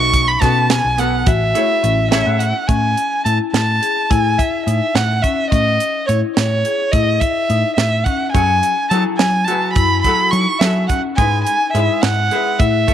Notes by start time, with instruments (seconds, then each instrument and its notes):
Already playing: picked electric bass B1, hollow-body jazz guitar B3 F#4 A4 D#5, marimba D#4, violin C#6
0.13 kick, closed hi-hat
0.28 violin B5
0.40 picked electric bass B2, hollow-body jazz guitar B3 F#4 A4 B4, marimba C#4, violin A5, kick, snare, closed hi-hat
0.70 violin G#5, snare, closed hi-hat
0.85 picked electric bass B1
0.98 hollow-body jazz guitar B3 F#4 A4 B4, violin F#5, closed hi-hat
1.26 picked electric bass A1, marimba F#4, violin E5, kick, closed hi-hat
1.54 hollow-body jazz guitar A3 E4 G#4 C#5, marimba E4, closed hi-hat
1.83 picked electric bass A1, marimba C#4, closed hi-hat
2.11 hollow-body jazz guitar A3 E4 G#4 C#5 G#5, marimba C#4, violin E5, snare, closed hi-hat
2.26 picked electric bass A2, hollow-body jazz guitar F#5
2.39 hollow-body jazz guitar E5, violin F#5, closed hi-hat
2.67 picked electric bass A2, marimba C#4, violin G#5, kick, closed hi-hat
2.97 closed hi-hat
3.25 picked electric bass A2, marimba E4, violin A5, closed hi-hat
3.53 picked electric bass A2, violin A5, snare, closed hi-hat
3.82 marimba G#4, closed hi-hat
4.10 picked electric bass A2, marimba E4, violin G#5, kick, closed hi-hat
4.38 violin E5, kick, closed hi-hat
4.66 picked electric bass A2, marimba D#4, violin E5, closed hi-hat
4.95 picked electric bass A2, violin F#5, snare, closed hi-hat
5.22 marimba C#4, violin E5, kick, closed hi-hat
5.51 picked electric bass A2, marimba C#4, violin D#5, kick, closed hi-hat
5.80 closed hi-hat
6.07 picked electric bass A2, marimba E4, violin C#5, closed hi-hat
6.36 picked electric bass A2, violin C#5, snare, closed hi-hat
6.65 marimba G#4, closed hi-hat
6.91 picked electric bass A2, marimba E4, violin D#5, kick, closed hi-hat
7.20 violin E5, kick, closed hi-hat
7.50 picked electric bass A2, marimba D#4, closed hi-hat
7.76 picked electric bass A2, violin E5, snare, closed hi-hat
8.04 marimba C#4, violin F#5, kick, closed hi-hat
8.32 picked electric bass F#2, hollow-body jazz guitar F#3 F#4 G#4 A4, marimba C#4, violin G#5, kick, closed hi-hat
8.63 closed hi-hat
8.90 hollow-body jazz guitar F#3 F#4 G#4 A4, picked electric bass F#3, marimba E4, violin A5, closed hi-hat
9.17 picked electric bass F#3, violin G#5, snare, closed hi-hat
9.45 hollow-body jazz guitar F#3 F#4 G#4, marimba F#4, violin A5, closed hi-hat
9.49 hollow-body jazz guitar B4
9.74 picked electric bass F#2, marimba E4, violin B5, kick, closed hi-hat
10.02 hollow-body jazz guitar F#3 F#4 G#4 A4, violin B5, kick, closed hi-hat
10.31 picked electric bass F#3, marimba D#4, violin C#6, closed hi-hat
10.59 hollow-body jazz guitar F#3 F#4 G#4 A4, picked electric bass F#3, violin E5, snare, closed hi-hat
10.88 marimba C#4, violin F#5, kick, closed hi-hat
11.16 picked electric bass G#2, hollow-body jazz guitar G#3 E4 G#4 B4, marimba D#4, violin G#5, kick, closed hi-hat
11.45 violin G#5, closed hi-hat
11.73 picked electric bass G#2, hollow-body jazz guitar G#3 G#4 B4 E5, marimba E4, violin E5, closed hi-hat
12.02 picked electric bass G#2, violin F#5, snare, closed hi-hat
12.31 hollow-body jazz guitar G#3 G#4 B4 E5, marimba G#4, closed hi-hat
12.59 picked electric bass A2, marimba E4, violin E5, kick, closed hi-hat
12.87 hollow-body jazz guitar A3 A4 C#5 E5, kick, closed hi-hat